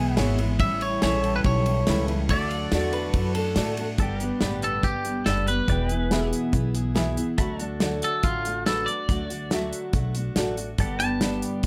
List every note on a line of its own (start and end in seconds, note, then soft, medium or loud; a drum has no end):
0.00 0.16 B1 medium
0.00 0.59 B2 medium
0.00 0.16 E3 soft
0.00 0.56 E3 medium
0.00 0.16 G#3 soft
0.00 0.59 G#3 medium
0.00 0.17 B3 medium
0.00 0.17 E4 medium
0.00 2.25 E4 medium
0.00 0.58 G#4 medium
0.00 0.59 G#4 medium
0.00 0.59 B4 medium
0.00 0.59 E5 medium
0.00 0.13 G#5 loud
0.13 0.39 E2 medium
0.13 0.39 B2 loud
0.13 0.46 E4 medium
0.13 0.47 G#4 medium
0.13 0.36 F#5 loud
0.13 snare loud
0.13 ride medium
0.17 0.59 G#1 medium
0.17 0.39 E3 loud
0.17 0.39 G#3 loud
0.17 0.39 B3 loud
0.17 0.38 E4 medium
0.17 0.48 C#5 loud
0.17 0.37 G#5 medium
0.38 0.60 E3 soft
0.38 0.61 G#3 medium
0.38 0.61 B3 medium
0.38 0.60 E4 medium
0.38 0.59 E5 medium
0.38 ride medium
0.59 1.01 A1 medium
0.59 1.02 A2 medium
0.59 2.28 C#3 medium
0.59 1.02 E3 medium
0.59 2.27 G3 medium
0.59 1.02 G3 medium
0.59 3.95 A3 medium
0.59 1.03 C#4 medium
0.59 1.03 E4 medium
0.59 2.28 G4 medium
0.59 0.82 E5 medium
0.59 kick loud
0.59 ride medium
0.81 1.02 C#5 medium
0.81 ride medium
1.01 1.43 A#1 medium
1.01 1.45 A2 medium
1.01 1.44 E3 medium
1.01 1.45 G3 medium
1.01 1.46 C#4 medium
1.01 1.31 E4 medium
1.01 1.46 E4 loud
1.01 1.23 G#4 medium
1.01 1.32 A4 medium
1.01 1.35 C#5 medium
1.01 1.32 C#5 medium
1.01 2.29 C#5 medium
1.01 snare loud
1.01 ride medium
1.05 2.30 E5 medium
1.23 2.29 A4 medium
1.23 ride medium
1.36 1.40 B4 medium
1.44 1.86 B1 loud
1.44 1.66 E3 medium
1.44 1.67 G3 medium
1.44 1.67 C#4 medium
1.44 1.66 E4 medium
1.44 2.05 C#5 loud
1.44 kick loud
1.44 ride medium
1.66 1.87 G3 soft
1.66 1.87 C#4 soft
1.66 1.88 E4 medium
1.66 ride medium
1.87 2.29 C#2 loud
1.87 2.09 A2 medium
1.87 2.09 E3 medium
1.87 2.09 G3 medium
1.87 2.09 C#4 medium
1.87 2.17 E4 medium
1.87 2.07 E4 loud
1.87 2.17 A4 medium
1.87 2.18 B4 medium
1.87 snare loud
1.87 ride medium
2.08 2.30 G3 soft
2.08 2.30 C#4 medium
2.08 2.30 E4 medium
2.08 ride medium
2.29 2.71 D2 medium
2.29 3.97 D3 medium
2.29 2.71 D3 medium
2.29 3.98 F#3 medium
2.29 2.72 A3 medium
2.29 2.72 D4 medium
2.29 3.97 F#4 medium
2.29 2.73 F#4 medium
2.29 3.97 A4 medium
2.29 3.99 A4 medium
2.29 3.53 D5 medium
2.29 3.99 D5 medium
2.29 kick loud
2.29 ride medium
2.33 2.58 E5 medium
2.51 ride medium
2.58 4.00 F#5 medium
2.72 3.13 E2 loud
2.72 3.13 D3 medium
2.72 3.15 A3 medium
2.72 3.15 D4 medium
2.72 3.02 F#4 medium
2.72 3.16 F#4 medium
2.72 3.02 A4 medium
2.72 3.03 D5 medium
2.72 snare loud
2.72 ride medium
2.93 3.34 B4 medium
2.93 ride medium
3.14 3.55 F#2 medium
3.14 3.36 D3 medium
3.14 3.36 A3 medium
3.14 3.35 D4 medium
3.14 3.34 F#4 medium
3.14 kick loud
3.14 ride medium
3.35 3.57 A3 medium
3.35 3.57 D4 medium
3.35 3.57 F#4 medium
3.35 3.87 A4 medium
3.35 ride medium
3.55 3.98 A2 medium
3.55 3.78 D3 medium
3.55 3.79 A3 medium
3.55 3.85 F#4 medium
3.55 3.86 A4 medium
3.55 3.86 D5 loud
3.55 snare loud
3.55 ride loud
3.59 3.79 D4 loud
3.59 3.77 F#4 loud
3.77 4.00 D4 medium
3.77 4.00 F#4 medium
3.77 ride medium
3.82 4.01 A3 soft
3.98 4.29 G1 medium
3.98 4.21 G2 medium
3.98 4.21 D3 medium
3.98 4.21 G3 medium
3.98 4.22 B3 medium
3.98 4.21 D4 medium
3.98 4.20 G4 loud
3.98 4.25 A4 medium
3.98 5.69 D5 medium
3.98 kick loud
3.98 closed hi-hat medium
4.03 5.69 G5 medium
4.20 4.41 B3 soft
4.20 4.42 D4 medium
4.20 4.42 G4 medium
4.20 closed hi-hat medium
4.24 4.42 G3 medium
4.24 5.68 B4 medium
4.41 4.78 A1 medium
4.41 4.84 G2 medium
4.41 4.85 D3 medium
4.41 4.83 G3 medium
4.41 4.84 B3 medium
4.41 4.84 D4 medium
4.41 4.71 G4 medium
4.41 4.85 G4 medium
4.41 4.71 B4 medium
4.41 4.72 D5 medium
4.41 snare loud
4.41 closed hi-hat medium
4.62 4.84 A4 medium
4.62 closed hi-hat medium
4.83 5.20 G1 medium
4.83 5.05 G3 medium
4.83 5.05 B3 medium
4.83 5.05 D4 medium
4.83 5.25 G4 medium
4.83 5.03 G4 medium
4.83 kick medium
4.83 closed hi-hat medium
5.05 5.26 G3 soft
5.05 5.26 B3 soft
5.05 5.27 D4 soft
5.05 5.26 G4 soft
5.05 closed hi-hat medium
5.25 5.63 F#1 medium
5.25 5.48 G2 medium
5.25 5.48 D3 medium
5.25 5.48 G3 medium
5.25 5.48 B3 medium
5.25 5.47 D4 medium
5.25 5.56 G4 medium
5.25 5.45 G4 medium
5.25 5.47 A4 medium
5.25 5.56 B4 medium
5.25 5.57 D5 medium
5.25 snare loud
5.25 closed hi-hat medium
5.47 5.68 G3 soft
5.47 5.68 B3 soft
5.47 5.69 D4 soft
5.47 5.69 G4 medium
5.47 6.31 B4 medium
5.47 closed hi-hat medium
5.68 6.30 E1 medium
5.68 5.90 E2 medium
5.68 5.90 B2 medium
5.68 5.90 E3 medium
5.68 5.90 B3 medium
5.68 5.89 E4 medium
5.68 5.88 G#4 medium
5.68 7.38 B4 medium
5.68 5.95 D5 medium
5.68 5.92 G5 medium
5.68 kick loud
5.68 closed hi-hat medium
5.89 6.11 E3 soft
5.89 6.11 B3 soft
5.89 6.12 E4 soft
5.89 6.11 G#4 medium
5.89 7.39 G#5 medium
5.89 closed hi-hat medium
5.95 7.38 E5 medium
6.10 6.54 E2 medium
6.10 6.54 B2 medium
6.10 6.51 E3 loud
6.10 6.52 B3 loud
6.10 6.53 E4 medium
6.10 6.41 G#4 medium
6.10 6.54 G#4 loud
6.10 6.41 B4 medium
6.10 6.42 E5 medium
6.10 snare loud
6.10 closed hi-hat medium
6.33 closed hi-hat medium
6.52 7.15 B1 medium
6.52 6.75 E3 medium
6.52 6.75 B3 medium
6.52 6.74 E4 medium
6.52 6.73 G#4 medium
6.52 kick medium
6.52 closed hi-hat medium
6.74 6.94 E3 soft
6.74 6.95 B3 soft
6.74 6.95 E4 medium
6.74 6.95 G#4 medium
6.74 closed hi-hat medium
6.95 7.17 E2 medium
6.95 7.17 B2 medium
6.95 7.17 E3 medium
6.95 7.16 B3 medium
6.95 7.16 E4 medium
6.95 7.25 G#4 medium
6.95 7.15 G#4 medium
6.95 7.26 B4 medium
6.95 7.26 E5 medium
6.95 snare loud
6.95 closed hi-hat medium
7.16 7.38 E3 soft
7.16 7.39 B3 soft
7.16 7.39 E4 medium
7.16 7.38 G#4 medium
7.16 closed hi-hat medium
7.38 8.00 D2 medium
7.38 7.60 D3 medium
7.38 7.60 F#3 medium
7.38 7.60 A3 medium
7.38 7.59 D4 medium
7.38 7.58 F#4 loud
7.38 10.75 A4 medium
7.38 7.63 E5 medium
7.38 7.65 B5 medium
7.38 kick loud
7.38 closed hi-hat medium
7.59 7.80 A3 medium
7.59 7.80 D4 medium
7.59 7.81 F#4 medium
7.59 closed hi-hat medium
7.63 10.76 D5 medium
7.63 10.77 A5 medium
7.80 8.66 D3 medium
7.80 8.22 F#3 loud
7.80 8.23 A3 medium
7.80 8.25 D4 medium
7.80 8.11 F#4 medium
7.80 8.24 F#4 loud
7.80 8.11 A4 medium
7.80 8.12 D5 medium
7.80 snare loud
7.80 closed hi-hat medium
8.02 8.24 A4 medium
8.02 closed hi-hat medium
8.23 8.85 A1 medium
8.23 8.45 F#3 medium
8.23 8.46 A3 medium
8.23 8.45 D4 medium
8.23 8.65 F4 medium
8.23 8.44 F#4 medium
8.23 kick loud
8.23 closed hi-hat medium
8.45 8.67 A3 soft
8.45 8.67 D4 soft
8.45 8.67 F#4 soft
8.45 closed hi-hat medium
8.66 8.88 D3 medium
8.66 8.88 F#3 medium
8.66 8.88 A3 medium
8.66 8.87 D4 medium
8.66 8.96 F#4 medium
8.66 8.86 F#4 medium
8.66 8.87 A4 medium
8.66 8.97 A4 medium
8.66 8.97 B4 medium
8.66 snare loud
8.66 closed hi-hat medium
8.86 9.08 A3 soft
8.86 9.09 D4 soft
8.86 9.09 F#4 medium
8.86 9.70 D5 medium
8.86 closed hi-hat medium
9.09 9.70 D2 medium
9.09 9.30 D3 medium
9.09 9.31 F#3 medium
9.09 9.31 A3 medium
9.09 9.30 D4 medium
9.09 9.29 F#4 medium
9.09 kick loud
9.09 closed hi-hat medium
9.30 9.50 A3 soft
9.30 9.51 D4 medium
9.30 9.51 F#4 medium
9.30 closed hi-hat medium
9.50 9.94 D3 medium
9.50 9.92 F#3 loud
9.50 9.94 A3 loud
9.50 9.95 D4 loud
9.50 9.81 F#4 medium
9.50 9.95 F#4 loud
9.50 9.81 A4 medium
9.50 9.82 E5 medium
9.50 snare loud
9.50 closed hi-hat medium
9.73 closed hi-hat medium
9.93 10.30 B1 medium
9.93 10.15 F#3 medium
9.93 10.16 A3 medium
9.93 10.16 D4 medium
9.93 10.15 F#4 medium
9.93 kick loud
9.93 closed hi-hat medium
10.15 10.36 A3 soft
10.15 10.37 D4 medium
10.15 10.37 F#4 medium
10.15 closed hi-hat medium
10.36 10.72 A1 medium
10.36 10.58 D3 medium
10.36 10.58 F#3 medium
10.36 10.58 A3 medium
10.36 10.58 D4 loud
10.36 10.66 F#4 medium
10.36 10.56 F#4 loud
10.36 10.66 A4 medium
10.36 10.67 D5 medium
10.36 snare loud
10.36 closed hi-hat medium
10.57 10.79 A3 soft
10.57 10.79 D4 soft
10.57 10.79 F#4 medium
10.57 closed hi-hat medium
10.78 11.40 G1 medium
10.78 11.00 G2 medium
10.78 11.00 D3 medium
10.78 11.00 G3 medium
10.78 10.99 B3 medium
10.78 10.99 D4 medium
10.78 10.98 G4 medium
10.78 11.05 A4 medium
10.78 11.67 D5 medium
10.78 11.01 F#5 medium
10.78 kick loud
10.78 closed hi-hat medium
10.99 11.20 G3 soft
10.99 11.21 B3 medium
10.99 11.21 D4 medium
10.99 11.21 G4 medium
10.99 11.67 G5 medium
10.99 11.42 A5 loud
10.99 closed hi-hat medium
11.05 11.67 B4 medium
11.21 11.64 G2 medium
11.21 11.64 D3 medium
11.21 11.63 G3 medium
11.21 11.64 B3 medium
11.21 11.65 D4 medium
11.21 11.51 G4 medium
11.21 11.65 G4 medium
11.21 11.51 B4 medium
11.21 11.52 D5 medium
11.21 snare loud
11.21 closed hi-hat medium
11.42 closed hi-hat medium
11.63 11.67 D2 medium
11.63 closed hi-hat medium